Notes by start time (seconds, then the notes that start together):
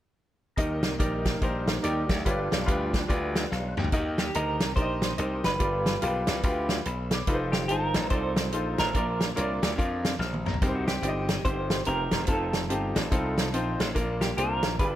0.56 D#2 D#3 G3 A#3 D#4 G4 A#4 D#5, kick, closed hi-hat
0.83 C2, snare, closed hi-hat
0.99 A#1 D#4 G4 A#4 D5, kick, closed hi-hat
1.25 kick, snare, closed hi-hat
1.41 A#1 D#4 G4 A#4 C5, kick, closed hi-hat
1.68 snare, closed hi-hat
1.83 D#2 D#4 G4 A#4 D5, closed hi-hat
2.09 D2, kick, snare, closed hi-hat
2.25 G1 G2 F3 G3 B3 D4 F4 G4 B4 C#5, kick, closed hi-hat
2.31 D5
2.52 B1, snare, closed hi-hat
2.66 D2 F4 G4 B4 F5, kick, closed hi-hat
2.94 kick, snare, closed hi-hat
3.08 D2 F4 G4 B4 D5, kick, closed hi-hat
3.35 snare, closed hi-hat
3.51 B1 F5, snare
3.77 D2 G5, mid tom
3.84 floor tom
3.92 D#2 D#3 D#4 F#4 A#4 D#5, kick, closed hi-hat
3.98 G4
4.18 G4, snare, closed hi-hat
4.34 D2 D#4 G4 A#4 D#5, closed hi-hat
4.60 C2, snare, closed hi-hat
4.76 A#1 D#4 G4 A#4 C5 D5, kick, closed hi-hat
4.82 D#5
5.02 snare, closed hi-hat
5.18 C2 D#4 G4 A#4 D#5, closed hi-hat
5.44 F#1 B4, snare, closed hi-hat
5.59 G1 G2 F4 G4 A#4 D5, kick, closed hi-hat
5.65 B4
5.86 snare, closed hi-hat
6.02 B1 F4 G4 A#4 F5, closed hi-hat
6.07 B4
6.27 C2, snare, closed hi-hat
6.43 D2 F4 G4 B4 F5, kick, closed hi-hat
6.69 G5, snare, closed hi-hat
6.85 B1 B5, closed hi-hat
7.11 D6, snare, closed hi-hat
7.27 F1 D#4 F4 A4 B4, kick, closed hi-hat
7.34 C5
7.52 G4, snare, closed hi-hat
7.68 G1 D#4 F4 A#4 C5 A5, closed hi-hat
7.94 A1, snare, closed hi-hat
8.10 C2 D#4 F4 A4 C5 D5, kick, closed hi-hat
8.36 snare, closed hi-hat
8.52 A#1 D#4 F4 A4 C5, closed hi-hat
8.78 A1 A#4, snare, closed hi-hat
8.95 A#1 A#2 D4 F4 A#4 D5, kick, closed hi-hat
9.21 snare, closed hi-hat
9.36 C2 D4 F4 A#4 C#5, closed hi-hat
9.41 D5
9.62 D2, snare, closed hi-hat
9.78 F2 D4 F4 A#4 F5, kick, closed hi-hat
10.05 snare, closed hi-hat
10.19 A#1 F6, snare
10.34 high tom
10.46 A#5, mid tom
10.54 floor tom
10.62 C2 C3 C4 D#4 G4 A#4, kick, closed hi-hat
10.67 C5
10.75 F#4
10.88 G4, snare, closed hi-hat
11.02 G1 C4 D#4 G4 D5, closed hi-hat
11.08 D#5
11.29 snare, closed hi-hat
11.45 G1 C4 D#4 G4 C5, kick, closed hi-hat
11.70 snare, closed hi-hat
11.85 F1 C4 D#4 G4 A#4 C5, closed hi-hat
12.11 E1, snare, closed hi-hat
12.27 F1 C4 D#4 F4 A4, kick, closed hi-hat
12.53 snare, closed hi-hat
12.69 G1 C4 D#4 F4 G4, closed hi-hat
12.96 A1, snare, closed hi-hat
13.11 C2 C4 D#4 F4 A4, kick, closed hi-hat
13.38 snare, closed hi-hat
13.53 A#1 C4 D#4 F4 C5, closed hi-hat
13.80 A1, snare, closed hi-hat
13.94 A#1 A#2 A#3 D4 F4 A#4, kick, closed hi-hat
14.21 G4, snare, closed hi-hat
14.37 C2 A#3 D4 F4 A#4 C5, closed hi-hat
14.63 A#1, snare, closed hi-hat
14.79 G1 G2 D4 F4 G4 G#4 B4, kick, closed hi-hat
14.85 B4